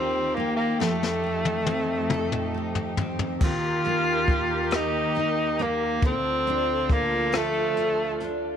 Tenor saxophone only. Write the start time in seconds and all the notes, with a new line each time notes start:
Already playing: C4
0.35 A#3
0.56 A#3
0.79 A3
3.44 F4
4.75 D#4
5.62 A#3
6.06 C4
6.93 A#3
7.37 A3